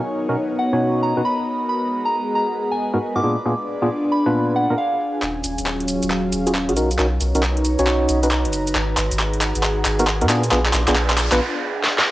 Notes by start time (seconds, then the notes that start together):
Already playing: F#3 B3 D#4 F#4 A#4 C#5 D#5 F5 G#5 A#5
0.15 shaker
0.29 B2 C#4 D#4 F#4 A#4, shaker
0.37 shaker
0.59 F#5
0.73 B2 C#4 D#4 F#4 C#5
0.81 shaker
1.03 A#5
1.17 B2 C#4 D#4 F#4 B4
1.25 B5
1.47 shaker
1.61 shaker
1.69 G#3 B4 B5
1.78 G#4
1.91 shaker
2.05 A#5
2.13 F#5, shaker
2.35 A#5, shaker
2.49 shaker
2.57 shaker
2.72 G#5
2.79 shaker
2.94 G#2 B3 D#4 F#4 A#4, shaker
3.01 shaker
3.16 G#2 B3 D#4 F#4 A#4 D6
3.23 A#2 B3 D4 F4 G#4 D5, shaker
3.38 shaker
3.45 A#2 B3 D4 F4 G#4, shaker
3.68 shaker
3.81 A#2 B3 D4 F4 G#4 G#5, shaker
3.90 shaker
4.12 B5, shaker
4.26 A#2 B3 D4 F4 B4, shaker
4.34 shaker
4.56 F#5, shaker
4.70 A#2 B3 D4 F4 A#4, shaker
4.78 F5, shaker
5.00 shaker
5.14 shaker
5.22 D#1 C#4 F4 F#4 G#4 C#5, clap, shaker
5.35 F#3
5.44 D#1, closed hi-hat, shaker
5.58 D#1 F5, closed hi-hat, shaker
5.66 clap, shaker
5.80 closed hi-hat
5.88 closed hi-hat, shaker
6.02 D#1, closed hi-hat, shaker
6.10 clap, shaker
6.32 D#1, closed hi-hat, shaker
6.47 C#4 F4 F#4 G#4, closed hi-hat, shaker
6.54 clap, shaker
6.69 B1 C#4 F4 F#4 G#4, closed hi-hat
6.76 C#4 D#4 F#4 A#4 B4 A#5, closed hi-hat, shaker
6.87 C#5, closed hi-hat, shaker
6.98 B1 C#4 D#4 F#4 A#4, clap, shaker
7.04 D#4
7.14 A#5
7.21 B1, closed hi-hat, shaker
7.35 B1 C#4 D#4 F#4 A#4, closed hi-hat, shaker
7.43 clap, shaker
7.57 closed hi-hat
7.65 closed hi-hat, shaker
7.79 B1 C#4 D#4 F#4 C#5, closed hi-hat, shaker
7.87 clap, shaker
8.09 B1, closed hi-hat, shaker
8.23 C#4 D#4 F#4 B4, closed hi-hat, shaker
8.31 clap, shaker
8.45 F#1, closed hi-hat
8.53 closed hi-hat, shaker
8.67 closed hi-hat, shaker
8.75 G#1 D#4 B4, clap, shaker
8.97 G#1 G#4, clap, closed hi-hat, shaker
9.11 G#1, closed hi-hat, shaker
9.19 F#5, clap, shaker
9.33 closed hi-hat
9.41 clap, closed hi-hat, shaker
9.55 G#1, closed hi-hat, shaker
9.63 clap, shaker
9.85 G#1, clap, closed hi-hat, shaker
9.99 B3 D#4 F#4 A#4, closed hi-hat, shaker
10.07 clap, shaker
10.21 A#2 B3 D#4 F#4 A#4, closed hi-hat
10.29 B3 D4 F4 G#4, clap, closed hi-hat, shaker
10.44 D5, closed hi-hat, shaker
10.51 A#1 B3 D4 F4 G#4, clap, noise sweep, shaker
10.66 clap
10.73 A#1, clap, closed hi-hat, shaker
10.88 A#1 B3 D4 F4 G#4, clap, closed hi-hat, shaker
10.96 clap, shaker
11.10 clap, closed hi-hat
11.18 clap, closed hi-hat, shaker
11.32 A#1 B3 D4 F4 B4, clap, closed hi-hat, shaker
11.84 snare
11.98 snare